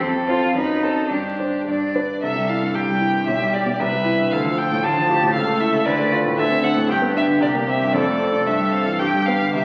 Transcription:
0.01 0.54 F2 soft
0.01 0.55 A4 soft
0.28 0.53 C4 soft
0.28 0.55 F4 medium
0.28 0.53 C5 soft
0.55 1.09 F#2 soft
0.55 1.10 D#4 medium
0.55 0.84 B4 soft
0.83 1.08 C4 soft
0.83 1.13 A4 soft
0.83 1.08 C5 soft
1.11 1.65 G2 soft
1.11 1.94 D4 soft
1.11 1.67 G4 soft
1.39 1.64 D4 soft
1.39 1.65 C5 soft
1.68 2.22 G2 soft
1.68 2.19 D5 soft
1.95 2.20 D4 soft
1.95 2.20 B4 soft
2.23 2.73 C2 soft
2.23 2.77 A4 soft
2.23 2.51 E5 soft
2.36 2.57 G3 soft
2.49 2.71 E4 soft
2.49 2.76 F5 soft
2.62 2.84 G2 soft
2.74 3.26 C2 soft
2.74 3.81 G4 soft
2.74 3.26 G5 medium
2.88 3.09 G3 soft
3.00 3.22 E4 soft
3.14 3.28 G2 soft
3.27 3.79 B1 soft
3.27 3.55 E5 medium
3.41 3.62 G3 soft
3.54 3.75 G4 soft
3.54 3.81 D5 soft
3.66 3.80 B2 soft
3.79 4.30 C2 soft
3.79 4.34 B4 medium
3.79 4.33 E5 medium
3.93 4.14 G3 soft
4.05 4.26 E4 soft
4.19 4.32 G2 soft
4.31 4.84 D2 soft
4.31 4.86 A4 soft
4.31 4.59 F5 medium
4.45 4.66 F3 soft
4.58 4.79 F4 soft
4.58 4.85 G5 medium
4.72 4.92 A2 soft
4.84 5.34 D2 soft
4.84 5.09 F4 soft
4.84 5.32 A5 medium
4.97 5.18 F3 soft
5.09 5.30 F4 soft
5.09 5.34 G4 medium
5.23 5.36 A2 soft
5.33 5.85 C#2 soft
5.33 5.88 A4 medium
5.33 5.62 F5 medium
5.48 5.69 A3 soft
5.60 5.81 E4 soft
5.60 5.87 E5 medium
5.74 5.87 C#3 soft
5.85 6.36 D2 medium
5.85 6.41 B4 medium
5.85 6.12 D5 medium
6.00 6.20 A3 soft
6.12 6.33 F4 soft
6.26 6.39 A2 soft
6.37 6.88 D2 soft
6.37 6.91 A4 medium
6.37 6.65 E5 medium
6.51 6.72 C4 soft
6.64 6.85 D4 soft
6.64 6.90 F#5 medium
6.76 6.90 A2 soft
6.89 7.40 G2 medium
6.89 7.94 G4 medium
6.89 6.99 G5 medium
7.02 7.23 B3 soft
7.15 7.36 D4 soft
7.15 7.24 E5 medium
7.27 7.41 D3 soft
7.40 7.92 C2 soft
7.40 7.50 D5 medium
7.55 7.76 A#3 soft
7.67 7.89 C4 soft
7.67 7.94 E5 medium
7.82 7.95 G2 soft
7.93 8.45 F2 medium
7.93 8.20 A4 medium
7.93 8.48 D5 medium
8.06 8.28 A3 soft
8.19 8.41 C4 soft
8.19 9.01 A4 medium
8.32 8.46 C3 soft
8.46 8.98 G2 soft
8.46 8.74 E5 medium
8.59 8.81 G3 soft
8.72 8.94 C4 soft
8.72 9.00 F5 medium
8.86 9.00 E3 soft
8.99 9.53 G2 soft
8.99 9.54 G4 soft
8.99 9.28 G5 medium
9.14 9.35 G3 soft
9.26 9.49 B3 soft
9.26 9.54 F5 medium
9.41 9.55 D3 soft
9.53 9.65 C2 soft
9.53 9.65 G4 soft
9.53 9.65 E5 medium

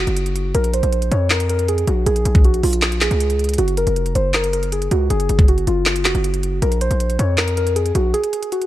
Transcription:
0.00 0.51 F#4 medium
0.07 0.53 F#1 loud
0.07 closed hi-hat medium
0.17 closed hi-hat medium
0.26 closed hi-hat medium
0.36 closed hi-hat medium
0.55 0.82 A#1 loud
0.55 0.71 A#4 medium
0.55 closed hi-hat medium
0.64 closed hi-hat medium
0.74 1.09 C5 medium
0.74 closed hi-hat medium
0.83 1.10 A#1 loud
0.83 closed hi-hat medium
0.93 closed hi-hat medium
1.02 closed hi-hat soft
1.11 1.84 F2 loud
1.11 1.28 C#5 medium
1.11 closed hi-hat medium
1.30 1.47 A#4 medium
1.30 snare loud
1.30 clap medium
1.30 closed hi-hat medium
1.40 closed hi-hat medium
1.50 1.66 A#4 medium
1.50 closed hi-hat medium
1.59 closed hi-hat medium
1.68 1.85 G#4 medium
1.68 closed hi-hat medium
1.78 closed hi-hat medium
1.87 2.06 A#1 loud
1.87 2.04 F#4 medium
1.87 closed hi-hat medium
2.06 2.25 A#1 loud
2.06 2.42 G#4 loud
2.06 closed hi-hat medium
2.16 closed hi-hat medium
2.25 2.62 A#1 loud
2.25 closed hi-hat medium
2.35 kick medium
2.35 closed hi-hat medium
2.45 2.61 F#4 medium
2.45 closed hi-hat medium
2.54 closed hi-hat soft
2.63 3.09 A#1 loud
2.63 2.99 F4 medium
2.63 closed hi-hat soft
2.63 open hi-hat medium
2.73 closed hi-hat medium
2.82 snare loud
2.82 clap medium
2.82 closed hi-hat medium
2.92 closed hi-hat medium
3.01 3.55 G#4 medium
3.01 snare medium
3.01 clap medium
3.01 closed hi-hat medium
3.11 3.56 C#2 loud
3.11 closed hi-hat medium
3.20 closed hi-hat medium
3.30 closed hi-hat medium
3.39 closed hi-hat medium
3.44 closed hi-hat medium
3.49 closed hi-hat medium
3.54 closed hi-hat medium
3.58 3.86 F#1 loud
3.58 3.74 F#4 medium
3.58 closed hi-hat medium
3.68 closed hi-hat medium
3.77 4.13 A#4 medium
3.77 closed hi-hat medium
3.87 4.14 F1 loud
3.87 closed hi-hat medium
3.96 closed hi-hat medium
4.06 closed hi-hat soft
4.15 4.88 F#1 loud
4.15 4.31 C5 medium
4.15 closed hi-hat medium
4.34 4.51 A#4 medium
4.34 snare loud
4.34 clap medium
4.34 closed hi-hat medium
4.44 closed hi-hat medium
4.53 4.69 A#4 medium
4.53 closed hi-hat medium
4.63 closed hi-hat medium
4.72 4.88 G#4 medium
4.72 closed hi-hat medium
4.82 closed hi-hat medium
4.91 5.10 C#2 loud
4.91 5.07 F#4 medium
4.91 closed hi-hat medium
5.10 5.29 F#1 loud
5.10 5.46 G#4 loud
5.10 closed hi-hat medium
5.20 closed hi-hat medium
5.29 5.66 F#1 loud
5.29 closed hi-hat medium
5.39 kick medium
5.39 closed hi-hat medium
5.48 5.64 F#4 medium
5.48 closed hi-hat medium
5.58 closed hi-hat soft
5.67 6.07 F#1 loud
5.67 6.03 F4 medium
5.67 closed hi-hat medium
5.86 snare loud
5.86 clap medium
5.86 closed hi-hat medium
5.96 closed hi-hat medium
6.05 6.14 F1 loud
6.05 6.59 F#4 medium
6.05 snare medium
6.05 clap medium
6.05 closed hi-hat medium
6.15 6.60 F#1 loud
6.15 closed hi-hat medium
6.24 closed hi-hat medium
6.34 closed hi-hat medium
6.43 closed hi-hat medium
6.62 6.90 A#1 loud
6.62 6.78 A#4 medium
6.62 closed hi-hat medium
6.72 closed hi-hat medium
6.81 7.17 C5 medium
6.81 closed hi-hat medium
6.91 7.18 A#1 loud
6.91 closed hi-hat medium
7.00 closed hi-hat medium
7.10 closed hi-hat soft
7.19 7.92 F2 loud
7.19 7.35 C#5 medium
7.19 closed hi-hat medium
7.38 7.54 A#4 medium
7.38 snare loud
7.38 clap medium
7.38 closed hi-hat medium
7.48 closed hi-hat medium
7.57 7.73 A#4 medium
7.57 closed hi-hat medium
7.67 closed hi-hat medium
7.76 7.92 G#4 medium
7.76 closed hi-hat medium
7.86 closed hi-hat medium
7.95 8.13 A#1 loud
7.95 8.11 F#4 medium
7.95 closed hi-hat medium
8.14 8.50 G#4 loud
8.14 closed hi-hat medium
8.24 closed hi-hat medium
8.33 closed hi-hat medium
8.43 closed hi-hat medium
8.52 8.67 F#4 medium
8.52 closed hi-hat medium
8.62 closed hi-hat soft

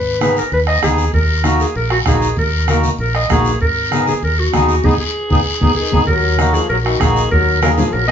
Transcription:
0.00 0.40 G#1 medium
0.00 0.22 B4 medium
0.21 0.43 B3 medium
0.21 0.43 D#4 medium
0.21 0.43 G#4 medium
0.21 0.36 B4 medium
0.21 bombo rim medium
0.21 high conga medium
0.21 short guiro medium
0.37 0.52 A#4 medium
0.37 short guiro medium
0.52 0.77 D#2 medium
0.52 0.60 B4 medium
0.52 long guiro medium
0.67 0.82 D#5 loud
0.67 bombo rim medium
0.82 1.07 D#2 medium
0.82 1.05 B3 medium
0.82 1.05 D#4 medium
0.82 1.12 G#4 medium
0.82 1.05 G#4 medium
0.82 bombo low medium
0.82 bombo rim medium
0.82 high conga medium
0.82 short guiro medium
0.98 short guiro medium
1.13 1.63 D#2 medium
1.13 1.63 A#4 medium
1.13 bombo low medium
1.13 long guiro medium
1.44 1.66 A#3 medium
1.44 1.66 D#4 medium
1.44 1.66 F#4 medium
1.44 bombo rim medium
1.44 high conga medium
1.44 short guiro medium
1.60 1.76 G#4 medium
1.60 short guiro medium
1.75 2.00 A#1 medium
1.75 1.90 A#4 medium
1.75 long guiro medium
1.90 1.98 F#4 medium
1.90 bombo rim medium
2.06 2.31 A#1 medium
2.06 2.28 A#3 medium
2.06 2.28 D#4 medium
2.06 2.28 F#4 medium
2.06 2.36 G#4 medium
2.06 bombo low medium
2.06 bombo rim medium
2.06 high conga medium
2.06 short guiro medium
2.22 short guiro medium
2.37 2.86 D#2 medium
2.37 2.67 A#4 medium
2.37 bombo low medium
2.37 long guiro medium
2.68 2.90 A#3 medium
2.68 2.90 D#4 medium
2.68 2.90 F#4 medium
2.68 2.83 A#4 medium
2.68 bombo rim medium
2.68 high conga medium
2.68 short guiro medium
2.83 high conga medium
2.83 short guiro medium
2.98 3.24 A#1 medium
2.98 3.14 A#4 medium
2.98 long guiro medium
3.15 3.29 D#5 medium
3.15 bombo rim medium
3.29 3.55 A#1 medium
3.29 3.51 A#3 medium
3.29 3.52 D#4 medium
3.29 3.52 F#4 medium
3.29 3.60 G#4 medium
3.29 bombo low medium
3.29 bombo rim medium
3.29 high conga medium
3.29 short guiro medium
3.45 short guiro medium
3.61 4.10 G#1 medium
3.61 4.04 A#4 medium
3.61 bombo low medium
3.61 long guiro medium
3.91 4.13 B3 medium
3.91 4.13 D#4 medium
3.91 4.14 G#4 medium
3.91 bombo rim medium
3.91 high conga medium
3.91 short guiro medium
4.07 4.22 G#4 medium
4.07 high conga medium
4.07 short guiro medium
4.23 4.47 D#2 medium
4.23 4.41 A#4 medium
4.23 long guiro medium
4.39 4.87 F#4 medium
4.53 4.78 D#2 medium
4.53 4.75 B3 medium
4.53 4.75 D#4 medium
4.53 4.75 G#4 medium
4.53 bombo low medium
4.53 bombo rim medium
4.53 high conga medium
4.53 short guiro medium
4.69 short guiro medium
4.84 4.96 G#1 medium
4.84 4.94 B3 medium
4.84 4.94 D#4 medium
4.84 4.94 G#4 medium
4.84 5.00 G#4 medium
4.84 bombo low loud
4.84 high conga medium
4.84 long guiro medium
5.00 5.73 G#4 medium
5.30 5.42 G#1 medium
5.30 5.40 B3 medium
5.30 5.40 D#4 medium
5.30 5.40 G#4 medium
5.30 bombo low medium
5.30 high conga medium
5.30 long guiro medium
5.61 5.73 G#1 medium
5.61 5.71 B3 medium
5.61 5.71 D#4 medium
5.61 5.71 G#4 medium
5.61 bombo low medium
5.61 high conga medium
5.61 long guiro medium
5.76 6.06 D#3 medium
5.76 6.05 G#4 medium
5.92 6.04 G#1 medium
5.92 6.02 B3 medium
5.92 6.02 D#4 medium
5.92 6.02 G#4 medium
5.92 bombo low medium
5.92 high conga medium
5.92 long guiro medium
6.07 6.57 D#2 medium
6.07 6.56 F#3 medium
6.07 6.55 A#4 medium
6.07 bombo low medium
6.07 long guiro medium
6.38 6.60 A#3 medium
6.38 6.60 D#4 medium
6.38 6.61 F#4 medium
6.38 bombo rim medium
6.38 high conga medium
6.38 short guiro medium
6.54 6.70 F3 medium
6.54 6.69 G#4 medium
6.54 short guiro medium
6.69 6.94 A#1 medium
6.69 6.77 F#3 medium
6.69 6.76 A#4 medium
6.69 long guiro medium
6.85 7.01 D#3 medium
6.85 7.02 F#4 medium
6.85 bombo rim medium
7.00 7.25 A#1 medium
7.00 7.31 D#3 medium
7.00 7.22 A#3 medium
7.00 7.23 D#4 medium
7.00 7.23 F#4 medium
7.00 7.31 G#4 medium
7.00 bombo low medium
7.00 bombo rim medium
7.00 high conga medium
7.00 short guiro medium
7.16 short guiro medium
7.31 7.81 D#2 medium
7.31 7.60 F#3 medium
7.31 7.60 A#4 loud
7.31 bombo low medium
7.31 long guiro medium
7.62 7.69 F#3 medium
7.62 7.84 A#3 medium
7.62 7.84 D#4 medium
7.62 7.84 G#4 medium
7.62 7.69 A#4 medium
7.62 bombo rim medium
7.62 high conga medium
7.62 short guiro medium
7.77 7.95 F3 medium
7.77 7.94 G#4 medium
7.77 high conga medium
7.77 low conga medium
7.77 short guiro medium
7.93 8.11 A#1 medium
7.93 8.07 F#3 medium
7.93 8.07 A#4 medium
7.93 long guiro medium
8.08 8.11 B3 medium
8.08 8.11 D#5 loud

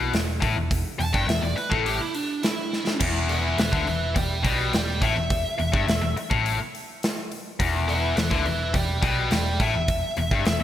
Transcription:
0.00 0.11 B1 medium
0.00 0.12 B2 loud
0.13 0.40 E1 medium
0.13 0.36 E2 medium
0.13 snare medium
0.13 open hi-hat medium
0.42 0.55 A1 medium
0.42 0.55 A2 loud
0.42 kick loud
0.42 open hi-hat medium
0.56 0.83 E1 medium
0.56 0.80 E2 medium
0.71 kick loud
0.71 open hi-hat medium
0.99 1.13 E1 medium
0.99 1.13 E2 medium
0.99 1.13 A5 medium
0.99 open hi-hat medium
1.13 1.27 G1 medium
1.13 1.27 G2 loud
1.13 1.28 G5 medium
1.13 kick loud
1.27 1.41 E1 medium
1.27 1.41 E2 medium
1.27 1.42 E5 medium
1.27 snare loud
1.27 open hi-hat medium
1.42 1.56 E1 medium
1.42 1.55 E2 medium
1.42 1.56 D5 medium
1.56 1.72 B4 loud
1.56 muted distorted electric guitar stroke medium
1.56 muted picked electric bass stroke soft
1.56 open hi-hat medium
1.70 1.98 A1 medium
1.70 1.99 A2 loud
1.70 1.86 A4 medium
1.70 kick loud
1.86 2.01 G4 medium
1.86 open hi-hat medium
2.01 2.15 E4 loud
2.14 2.43 D4 medium
2.14 open hi-hat medium
2.43 2.99 E4 loud
2.43 snare loud
2.43 open hi-hat medium
2.73 snare medium
2.87 snare medium
3.00 3.54 E1 medium
3.00 3.57 E2 loud
3.00 kick loud
3.00 crash loud
3.29 3.58 B4 medium
3.29 3.58 E5 medium
3.29 open hi-hat medium
3.58 3.72 E1 medium
3.58 3.73 E2 medium
3.58 3.85 B4 medium
3.58 3.87 E5 loud
3.58 snare loud
3.58 open hi-hat medium
3.72 3.86 D2 loud
3.72 3.86 D3 loud
3.72 kick loud
3.86 4.14 E1 medium
3.86 4.09 E2 medium
3.86 4.14 B4 medium
3.86 4.16 E5 loud
3.86 open hi-hat soft
4.15 4.43 E1 medium
4.15 4.38 E2 medium
4.15 4.43 D5 medium
4.15 4.45 G5 medium
4.15 kick loud
4.15 open hi-hat medium
4.43 4.71 B1 medium
4.43 4.72 B2 loud
4.43 4.72 D5 medium
4.43 4.73 G5 medium
4.43 kick loud
4.43 open hi-hat medium
4.73 5.00 E1 medium
4.73 4.96 E2 medium
4.73 5.00 D5 medium
4.73 5.02 G5 medium
4.73 snare loud
4.73 open hi-hat medium
5.02 5.15 A1 medium
5.02 5.15 A2 loud
5.02 6.14 E5 loud
5.02 kick loud
5.02 open hi-hat medium
5.16 5.43 E1 medium
5.16 5.39 E2 medium
5.30 kick loud
5.30 open hi-hat medium
5.58 5.73 E1 medium
5.58 5.73 E2 medium
5.58 open hi-hat medium
5.73 5.87 G1 loud
5.73 5.87 G2 loud
5.73 kick loud
5.87 6.01 E1 medium
5.87 6.00 E2 medium
5.87 snare loud
5.87 open hi-hat medium
6.02 6.15 E1 medium
6.02 6.15 E2 medium
6.16 muted picked electric bass stroke soft
6.16 muted distorted electric guitar stroke medium
6.16 open hi-hat medium
6.30 6.57 A1 medium
6.30 6.58 A2 loud
6.30 kick loud
6.46 open hi-hat medium
6.75 open hi-hat medium
7.03 snare loud
7.03 open hi-hat medium
7.32 open hi-hat medium
7.60 8.13 E1 medium
7.60 8.16 E2 loud
7.60 kick loud
7.60 open hi-hat medium
7.88 8.15 B4 medium
7.88 8.16 E5 medium
7.88 open hi-hat medium
8.16 8.30 E1 medium
8.16 8.32 E2 medium
8.16 8.43 B4 medium
8.16 8.45 E5 medium
8.16 snare loud
8.16 open hi-hat medium
8.31 8.45 D2 loud
8.31 8.44 D3 loud
8.31 kick loud
8.45 8.72 E1 medium
8.45 8.69 E2 medium
8.45 8.73 B4 medium
8.45 8.74 E5 medium
8.45 open hi-hat medium
8.74 9.01 E1 medium
8.74 8.97 E2 medium
8.74 9.01 D5 medium
8.74 9.03 G5 medium
8.74 kick loud
8.74 open hi-hat medium
9.02 9.29 B1 medium
9.02 9.30 B2 loud
9.02 9.30 D5 medium
9.02 9.31 G5 loud
9.02 kick loud
9.02 open hi-hat medium
9.31 9.58 E1 medium
9.31 9.54 E2 medium
9.31 9.58 D5 medium
9.31 9.59 G5 medium
9.31 snare loud
9.31 open hi-hat medium
9.60 9.73 A1 medium
9.60 9.74 A2 loud
9.60 10.63 E5 loud
9.60 kick loud
9.60 open hi-hat medium
9.74 10.01 E1 medium
9.74 9.98 E2 medium
9.88 kick loud
9.88 open hi-hat medium
10.17 10.30 E1 medium
10.17 10.32 E2 medium
10.17 open hi-hat medium
10.31 10.45 G1 loud
10.31 10.45 G2 loud
10.31 kick loud
10.45 10.60 E1 medium
10.45 10.59 E2 medium
10.45 snare loud
10.45 open hi-hat medium
10.60 10.63 E1 medium
10.60 10.63 E2 medium

